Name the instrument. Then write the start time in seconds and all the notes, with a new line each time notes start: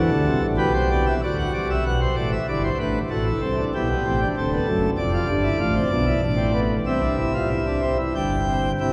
pipe organ
Already playing: F#4 A4
0.11 D2 D3
0.27 C2 C3
0.42 A1 A2
0.57 B1 B2 G4 B4
0.74 C5
0.91 D5
1.07 E5
1.23 D2 D3 F#4 D5
1.38 F#5
1.54 C2 C3 D5
1.70 E5
1.86 B1 B2 F#5
2.01 C5
2.16 A1 A2 D5
2.32 E5
2.48 G1 G2 E4 D5
2.64 C5
2.79 A1 A2 D4 B4
3.10 A1 A2 F#4 A4
3.26 E4
3.41 C2 C3 C4
3.58 D4
3.74 B1 B2 E4 G4
3.89 B3
4.05 A1 A2 C4
4.21 D4
4.37 D1 D2 C4 A4
4.53 B3
4.68 F#1 F#2 A3
4.97 F1 F2 D4 D5
5.13 F4
5.29 G1 G2 D4
5.43 E4
5.59 A1 A2 F4
5.74 C4
5.90 B1 B2 D4
6.06 E4
6.22 A1 A2 D4
6.37 C4
6.54 B3
6.86 C2 C3 C4 E5
7.01 D4
7.18 E4
7.34 F4
7.50 E4
7.66 D4
7.82 C4
7.98 E4
8.15 G1 G2 D4 G5
8.48 C4
8.80 C2 C3 E4 G5